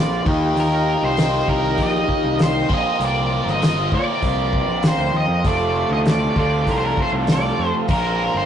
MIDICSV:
0, 0, Header, 1, 6, 480
1, 0, Start_track
1, 0, Tempo, 609756
1, 451, Time_signature, 4, 2, 24, 8
1, 6656, End_track
2, 0, Start_track
2, 0, Title_t, "Lead electric guitar"
2, 0, Program_c, 0, 29
2, 0, Note_on_c, 0, 74, 84
2, 183, Note_off_c, 0, 74, 0
2, 474, Note_on_c, 0, 70, 82
2, 821, Note_off_c, 0, 70, 0
2, 824, Note_on_c, 0, 72, 73
2, 1176, Note_off_c, 0, 72, 0
2, 1179, Note_on_c, 0, 70, 75
2, 1423, Note_off_c, 0, 70, 0
2, 1438, Note_on_c, 0, 75, 88
2, 1874, Note_off_c, 0, 75, 0
2, 1911, Note_on_c, 0, 72, 70
2, 2149, Note_off_c, 0, 72, 0
2, 2154, Note_on_c, 0, 75, 76
2, 2368, Note_off_c, 0, 75, 0
2, 2401, Note_on_c, 0, 74, 83
2, 2755, Note_off_c, 0, 74, 0
2, 2758, Note_on_c, 0, 75, 82
2, 3081, Note_off_c, 0, 75, 0
2, 3108, Note_on_c, 0, 74, 81
2, 3837, Note_on_c, 0, 72, 67
2, 3842, Note_off_c, 0, 74, 0
2, 4067, Note_on_c, 0, 75, 76
2, 4072, Note_off_c, 0, 72, 0
2, 4284, Note_off_c, 0, 75, 0
2, 4310, Note_on_c, 0, 74, 81
2, 4637, Note_off_c, 0, 74, 0
2, 4666, Note_on_c, 0, 75, 70
2, 4705, Note_off_c, 0, 75, 0
2, 4797, Note_on_c, 0, 74, 80
2, 5028, Note_off_c, 0, 74, 0
2, 5038, Note_on_c, 0, 74, 82
2, 5272, Note_off_c, 0, 74, 0
2, 5282, Note_on_c, 0, 70, 79
2, 5320, Note_off_c, 0, 70, 0
2, 5336, Note_on_c, 0, 72, 73
2, 5377, Note_off_c, 0, 72, 0
2, 5394, Note_on_c, 0, 70, 89
2, 5499, Note_off_c, 0, 70, 0
2, 5529, Note_on_c, 0, 72, 76
2, 5589, Note_off_c, 0, 72, 0
2, 5768, Note_on_c, 0, 74, 67
2, 6085, Note_off_c, 0, 74, 0
2, 6225, Note_on_c, 0, 70, 82
2, 6586, Note_off_c, 0, 70, 0
2, 6589, Note_on_c, 0, 72, 85
2, 6656, Note_off_c, 0, 72, 0
2, 6656, End_track
3, 0, Start_track
3, 0, Title_t, "Transistor combo organ"
3, 0, Program_c, 1, 18
3, 0, Note_on_c, 1, 60, 60
3, 0, Note_on_c, 1, 65, 54
3, 0, Note_on_c, 1, 70, 58
3, 0, Note_on_c, 1, 72, 65
3, 170, Note_off_c, 1, 65, 0
3, 172, Note_off_c, 1, 72, 0
3, 173, Note_off_c, 1, 60, 0
3, 193, Note_off_c, 1, 70, 0
3, 227, Note_on_c, 1, 67, 53
3, 229, Note_on_c, 1, 63, 61
3, 232, Note_on_c, 1, 65, 61
3, 233, Note_on_c, 1, 70, 73
3, 2122, Note_off_c, 1, 67, 0
3, 2123, Note_off_c, 1, 63, 0
3, 2138, Note_on_c, 1, 58, 56
3, 2144, Note_on_c, 1, 60, 54
3, 4273, Note_off_c, 1, 70, 0
3, 4274, Note_off_c, 1, 58, 0
3, 4293, Note_on_c, 1, 69, 69
3, 4297, Note_on_c, 1, 57, 63
3, 6191, Note_off_c, 1, 69, 0
3, 6194, Note_off_c, 1, 57, 0
3, 6207, Note_on_c, 1, 58, 66
3, 6213, Note_on_c, 1, 70, 73
3, 6656, Note_off_c, 1, 58, 0
3, 6656, Note_off_c, 1, 60, 0
3, 6656, Note_off_c, 1, 65, 0
3, 6656, Note_off_c, 1, 70, 0
3, 6656, End_track
4, 0, Start_track
4, 0, Title_t, "Overdriven electric guitar"
4, 0, Program_c, 2, 29
4, 0, Note_on_c, 2, 46, 62
4, 0, Note_on_c, 2, 53, 75
4, 0, Note_on_c, 2, 58, 77
4, 0, Note_on_c, 2, 60, 70
4, 0, Note_on_c, 2, 65, 74
4, 197, Note_off_c, 2, 53, 0
4, 199, Note_off_c, 2, 60, 0
4, 200, Note_on_c, 2, 51, 83
4, 206, Note_off_c, 2, 46, 0
4, 210, Note_off_c, 2, 58, 0
4, 213, Note_on_c, 2, 58, 87
4, 220, Note_off_c, 2, 65, 0
4, 220, Note_on_c, 2, 63, 89
4, 223, Note_on_c, 2, 67, 92
4, 910, Note_off_c, 2, 51, 0
4, 919, Note_on_c, 2, 51, 69
4, 922, Note_off_c, 2, 63, 0
4, 924, Note_off_c, 2, 67, 0
4, 926, Note_off_c, 2, 58, 0
4, 929, Note_on_c, 2, 58, 81
4, 936, Note_on_c, 2, 63, 76
4, 945, Note_on_c, 2, 67, 80
4, 2112, Note_off_c, 2, 51, 0
4, 2116, Note_on_c, 2, 46, 83
4, 2117, Note_off_c, 2, 58, 0
4, 2121, Note_off_c, 2, 63, 0
4, 2124, Note_on_c, 2, 53, 80
4, 2125, Note_off_c, 2, 67, 0
4, 2127, Note_on_c, 2, 58, 77
4, 2131, Note_on_c, 2, 60, 83
4, 2137, Note_on_c, 2, 65, 88
4, 2829, Note_off_c, 2, 46, 0
4, 2836, Note_off_c, 2, 58, 0
4, 2838, Note_on_c, 2, 46, 71
4, 2839, Note_off_c, 2, 53, 0
4, 2843, Note_on_c, 2, 53, 70
4, 2848, Note_on_c, 2, 58, 71
4, 2852, Note_off_c, 2, 60, 0
4, 2855, Note_on_c, 2, 60, 76
4, 2856, Note_off_c, 2, 65, 0
4, 2859, Note_on_c, 2, 65, 85
4, 4031, Note_off_c, 2, 46, 0
4, 4036, Note_off_c, 2, 58, 0
4, 4284, Note_on_c, 2, 41, 72
4, 4289, Note_on_c, 2, 48, 78
4, 4292, Note_off_c, 2, 53, 0
4, 4295, Note_on_c, 2, 53, 75
4, 4298, Note_off_c, 2, 60, 0
4, 4301, Note_on_c, 2, 57, 87
4, 4301, Note_on_c, 2, 60, 79
4, 4304, Note_off_c, 2, 65, 0
4, 4308, Note_on_c, 2, 65, 80
4, 4993, Note_off_c, 2, 41, 0
4, 4996, Note_off_c, 2, 48, 0
4, 5000, Note_off_c, 2, 65, 0
4, 5002, Note_off_c, 2, 57, 0
4, 5003, Note_on_c, 2, 65, 82
4, 5005, Note_off_c, 2, 60, 0
4, 5008, Note_on_c, 2, 60, 79
4, 5014, Note_on_c, 2, 57, 76
4, 5015, Note_off_c, 2, 53, 0
4, 5018, Note_on_c, 2, 53, 67
4, 5021, Note_on_c, 2, 48, 65
4, 5023, Note_on_c, 2, 41, 67
4, 6194, Note_off_c, 2, 60, 0
4, 6197, Note_off_c, 2, 57, 0
4, 6201, Note_off_c, 2, 48, 0
4, 6202, Note_off_c, 2, 41, 0
4, 6206, Note_on_c, 2, 46, 72
4, 6212, Note_off_c, 2, 53, 0
4, 6215, Note_on_c, 2, 53, 77
4, 6221, Note_on_c, 2, 58, 85
4, 6229, Note_on_c, 2, 60, 83
4, 6230, Note_off_c, 2, 65, 0
4, 6233, Note_on_c, 2, 65, 94
4, 6656, Note_off_c, 2, 46, 0
4, 6656, Note_off_c, 2, 53, 0
4, 6656, Note_off_c, 2, 58, 0
4, 6656, Note_off_c, 2, 60, 0
4, 6656, Note_off_c, 2, 65, 0
4, 6656, End_track
5, 0, Start_track
5, 0, Title_t, "Picked electric bass"
5, 0, Program_c, 3, 34
5, 0, Note_on_c, 3, 34, 70
5, 152, Note_off_c, 3, 34, 0
5, 205, Note_on_c, 3, 39, 77
5, 406, Note_off_c, 3, 39, 0
5, 439, Note_on_c, 3, 39, 81
5, 742, Note_off_c, 3, 39, 0
5, 808, Note_on_c, 3, 36, 80
5, 1107, Note_off_c, 3, 36, 0
5, 1166, Note_on_c, 3, 36, 83
5, 1402, Note_off_c, 3, 36, 0
5, 1402, Note_on_c, 3, 34, 95
5, 1605, Note_off_c, 3, 34, 0
5, 1765, Note_on_c, 3, 36, 70
5, 2066, Note_off_c, 3, 36, 0
5, 2122, Note_on_c, 3, 34, 69
5, 2226, Note_off_c, 3, 34, 0
5, 2359, Note_on_c, 3, 36, 89
5, 2663, Note_off_c, 3, 36, 0
5, 2722, Note_on_c, 3, 31, 82
5, 3088, Note_on_c, 3, 46, 82
5, 3100, Note_off_c, 3, 31, 0
5, 3189, Note_off_c, 3, 46, 0
5, 3326, Note_on_c, 3, 36, 79
5, 3627, Note_off_c, 3, 36, 0
5, 3687, Note_on_c, 3, 34, 77
5, 3888, Note_off_c, 3, 34, 0
5, 3918, Note_on_c, 3, 38, 75
5, 4033, Note_off_c, 3, 38, 0
5, 4039, Note_on_c, 3, 39, 73
5, 4153, Note_off_c, 3, 39, 0
5, 4157, Note_on_c, 3, 41, 66
5, 4272, Note_off_c, 3, 41, 0
5, 4289, Note_on_c, 3, 29, 89
5, 4588, Note_off_c, 3, 29, 0
5, 4639, Note_on_c, 3, 38, 73
5, 4942, Note_off_c, 3, 38, 0
5, 5007, Note_on_c, 3, 38, 83
5, 5249, Note_off_c, 3, 38, 0
5, 5249, Note_on_c, 3, 36, 91
5, 5448, Note_off_c, 3, 36, 0
5, 5608, Note_on_c, 3, 36, 72
5, 5907, Note_off_c, 3, 36, 0
5, 5973, Note_on_c, 3, 41, 80
5, 6071, Note_off_c, 3, 41, 0
5, 6210, Note_on_c, 3, 34, 85
5, 6507, Note_off_c, 3, 34, 0
5, 6568, Note_on_c, 3, 31, 77
5, 6656, Note_off_c, 3, 31, 0
5, 6656, End_track
6, 0, Start_track
6, 0, Title_t, "Drums"
6, 207, Note_on_c, 9, 36, 104
6, 286, Note_off_c, 9, 36, 0
6, 447, Note_on_c, 9, 46, 43
6, 526, Note_off_c, 9, 46, 0
6, 923, Note_on_c, 9, 46, 45
6, 932, Note_on_c, 9, 38, 106
6, 1002, Note_off_c, 9, 46, 0
6, 1010, Note_off_c, 9, 38, 0
6, 1163, Note_on_c, 9, 36, 75
6, 1242, Note_off_c, 9, 36, 0
6, 1399, Note_on_c, 9, 46, 41
6, 1402, Note_on_c, 9, 36, 72
6, 1478, Note_off_c, 9, 46, 0
6, 1481, Note_off_c, 9, 36, 0
6, 1643, Note_on_c, 9, 36, 77
6, 1722, Note_off_c, 9, 36, 0
6, 1884, Note_on_c, 9, 46, 54
6, 1892, Note_on_c, 9, 38, 115
6, 1962, Note_off_c, 9, 46, 0
6, 1971, Note_off_c, 9, 38, 0
6, 2124, Note_on_c, 9, 36, 104
6, 2203, Note_off_c, 9, 36, 0
6, 2367, Note_on_c, 9, 46, 45
6, 2446, Note_off_c, 9, 46, 0
6, 2735, Note_on_c, 9, 38, 34
6, 2814, Note_off_c, 9, 38, 0
6, 2851, Note_on_c, 9, 46, 52
6, 2859, Note_on_c, 9, 38, 102
6, 2929, Note_off_c, 9, 46, 0
6, 2938, Note_off_c, 9, 38, 0
6, 3086, Note_on_c, 9, 36, 75
6, 3165, Note_off_c, 9, 36, 0
6, 3326, Note_on_c, 9, 36, 73
6, 3326, Note_on_c, 9, 46, 42
6, 3404, Note_off_c, 9, 46, 0
6, 3405, Note_off_c, 9, 36, 0
6, 3565, Note_on_c, 9, 36, 76
6, 3644, Note_off_c, 9, 36, 0
6, 3800, Note_on_c, 9, 46, 53
6, 3809, Note_on_c, 9, 38, 111
6, 3879, Note_off_c, 9, 46, 0
6, 3888, Note_off_c, 9, 38, 0
6, 4287, Note_on_c, 9, 36, 103
6, 4290, Note_on_c, 9, 46, 44
6, 4366, Note_off_c, 9, 36, 0
6, 4368, Note_off_c, 9, 46, 0
6, 4767, Note_on_c, 9, 46, 45
6, 4775, Note_on_c, 9, 38, 100
6, 4845, Note_off_c, 9, 46, 0
6, 4854, Note_off_c, 9, 38, 0
6, 5008, Note_on_c, 9, 36, 70
6, 5087, Note_off_c, 9, 36, 0
6, 5250, Note_on_c, 9, 36, 74
6, 5253, Note_on_c, 9, 46, 45
6, 5328, Note_off_c, 9, 36, 0
6, 5332, Note_off_c, 9, 46, 0
6, 5489, Note_on_c, 9, 36, 78
6, 5568, Note_off_c, 9, 36, 0
6, 5724, Note_on_c, 9, 46, 48
6, 5733, Note_on_c, 9, 38, 106
6, 5803, Note_off_c, 9, 46, 0
6, 5811, Note_off_c, 9, 38, 0
6, 6209, Note_on_c, 9, 46, 45
6, 6210, Note_on_c, 9, 36, 100
6, 6288, Note_off_c, 9, 36, 0
6, 6288, Note_off_c, 9, 46, 0
6, 6656, End_track
0, 0, End_of_file